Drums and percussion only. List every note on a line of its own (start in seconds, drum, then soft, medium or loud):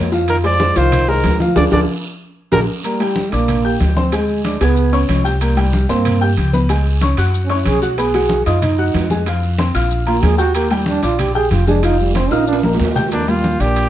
0.12 high conga soft
0.12 short guiro medium
0.12 maracas medium
0.28 high conga soft
0.28 high timbale medium
0.28 long guiro medium
0.28 maracas medium
0.44 high conga soft
0.44 high timbale medium
0.44 maracas soft
0.60 high conga loud
0.60 short guiro medium
0.60 maracas soft
0.76 high conga soft
0.76 high timbale medium
0.76 short guiro medium
0.76 maracas medium
0.92 high conga soft
0.92 low conga medium
0.92 high timbale loud
0.92 long guiro medium
0.92 maracas medium
1.08 high conga soft
1.08 maracas soft
1.24 high conga medium
1.24 high timbale medium
1.24 low timbale medium
1.24 short guiro medium
1.24 maracas soft
1.40 high conga medium
1.40 short guiro medium
1.40 maracas medium
1.56 high conga loud
1.56 high timbale loud
1.56 long guiro loud
1.56 maracas loud
1.72 high conga medium
1.72 high timbale loud
1.72 long guiro loud
1.72 maracas medium
2.52 high conga loud
2.52 high timbale medium
2.52 long guiro loud
2.52 maracas loud
2.84 high conga soft
2.84 high timbale medium
2.84 long guiro medium
2.84 maracas medium
3.00 high conga soft
3.00 high timbale medium
3.00 maracas soft
3.16 high conga loud
3.16 short guiro medium
3.16 maracas soft
3.32 high conga soft
3.32 high timbale medium
3.32 short guiro medium
3.32 maracas medium
3.48 high conga soft
3.48 low conga medium
3.48 high timbale medium
3.48 long guiro medium
3.48 maracas medium
3.64 high conga soft
3.64 maracas soft
3.80 high conga medium
3.80 high timbale medium
3.80 low timbale medium
3.80 short guiro medium
3.80 maracas soft
3.96 high conga medium
3.96 short guiro medium
3.96 maracas medium
4.12 high conga soft
4.12 high timbale medium
4.12 long guiro medium
4.12 maracas loud
4.29 high conga soft
4.29 maracas soft
4.44 high conga medium
4.44 high timbale medium
4.44 short guiro medium
4.44 maracas soft
4.61 high timbale medium
4.61 short guiro medium
4.61 maracas medium
4.77 high conga soft
4.77 long guiro medium
4.77 maracas medium
4.93 high conga soft
4.93 high timbale medium
4.93 maracas soft
5.09 high conga medium
5.09 high timbale medium
5.09 low timbale medium
5.09 short guiro medium
5.09 maracas soft
5.25 high conga soft
5.25 short guiro medium
5.25 maracas medium
5.41 high conga soft
5.41 high timbale medium
5.41 long guiro medium
5.41 maracas medium
5.57 high conga soft
5.57 high timbale medium
5.57 maracas soft
5.73 high conga loud
5.73 short guiro medium
5.73 maracas soft
5.89 high conga soft
5.89 high timbale medium
5.89 short guiro medium
5.89 maracas medium
6.05 high conga soft
6.05 low conga medium
6.05 high timbale loud
6.05 long guiro medium
6.05 maracas medium
6.22 high conga soft
6.22 maracas soft
6.37 high conga medium
6.37 high timbale medium
6.37 short guiro medium
6.37 maracas soft
6.53 high conga medium
6.53 short guiro medium
6.53 maracas medium
6.69 high timbale medium
6.69 long guiro medium
6.69 maracas loud
6.86 high conga soft
6.86 maracas soft
7.01 high conga loud
7.01 high timbale medium
7.01 short guiro medium
7.01 maracas soft
7.17 high timbale loud
7.17 short guiro medium
7.17 maracas medium
7.34 high conga soft
7.34 long guiro medium
7.34 maracas medium
7.50 high conga soft
7.50 high timbale medium
7.50 maracas soft
7.65 high conga medium
7.65 high timbale medium
7.65 short guiro medium
7.65 maracas soft
7.82 high conga soft
7.82 short guiro medium
7.82 maracas medium
7.97 high conga soft
7.97 high timbale medium
7.97 long guiro medium
7.97 maracas medium
8.14 high conga soft
8.14 high timbale medium
8.14 maracas soft
8.29 high conga loud
8.29 short guiro medium
8.29 maracas soft
8.46 high conga soft
8.46 high timbale medium
8.46 short guiro medium
8.46 maracas medium
8.62 high conga soft
8.62 low conga medium
8.62 high timbale medium
8.62 long guiro medium
8.62 maracas medium
8.78 high conga soft
8.78 maracas soft
8.94 high conga medium
8.94 high timbale medium
8.94 low timbale medium
8.94 short guiro medium
8.94 maracas soft
9.10 high conga medium
9.10 short guiro medium
9.10 maracas medium
9.26 high conga soft
9.26 high timbale medium
9.26 long guiro medium
9.26 maracas loud
9.42 high conga soft
9.42 maracas soft
9.59 high conga loud
9.59 high timbale medium
9.59 short guiro medium
9.59 maracas soft
9.75 high timbale medium
9.75 short guiro medium
9.75 maracas medium
9.91 high conga soft
9.91 long guiro medium
9.91 maracas medium
10.07 high conga soft
10.07 high timbale medium
10.07 maracas soft
10.23 high conga medium
10.23 high timbale medium
10.23 low timbale medium
10.23 short guiro medium
10.23 maracas soft
10.38 high conga soft
10.38 short guiro medium
10.38 maracas medium
10.54 high conga soft
10.54 high timbale medium
10.54 long guiro medium
10.54 maracas loud
10.70 high conga soft
10.70 high timbale medium
10.70 maracas soft
10.86 high conga loud
10.86 short guiro medium
10.86 maracas soft
11.03 high conga soft
11.03 high timbale medium
11.03 short guiro medium
11.03 maracas medium
11.19 high conga soft
11.19 low conga medium
11.19 high timbale loud
11.19 long guiro medium
11.19 maracas medium
11.35 high conga soft
11.35 maracas soft
11.51 high conga medium
11.51 high timbale medium
11.51 short guiro medium
11.51 maracas soft
11.67 high conga medium
11.67 short guiro medium
11.67 maracas medium
11.83 high timbale medium
11.83 long guiro medium
11.83 maracas loud
12.00 high conga soft
12.00 maracas soft
12.15 high conga loud
12.15 high timbale medium
12.15 short guiro medium
12.15 maracas soft
12.31 high timbale medium
12.31 short guiro medium
12.31 maracas medium
12.42 high timbale medium
12.47 high conga soft
12.47 long guiro medium
12.47 maracas loud
12.53 high timbale loud
12.63 high conga loud
12.63 low timbale medium
12.63 maracas soft
12.74 low timbale medium
12.79 low conga medium
12.79 short guiro medium
12.79 maracas soft
12.85 low timbale loud
12.95 low conga medium
12.95 short guiro medium
12.95 maracas medium
13.07 low timbale medium
13.11 high conga soft
13.11 high timbale medium
13.11 long guiro medium
13.11 maracas loud
13.28 high conga soft
13.28 high timbale medium
13.28 maracas soft
13.44 high conga medium
13.44 short guiro medium
13.44 maracas soft
13.60 high timbale medium
13.60 short guiro medium
13.60 maracas medium
13.76 high conga soft
13.76 high timbale medium
13.76 long guiro medium
13.76 maracas medium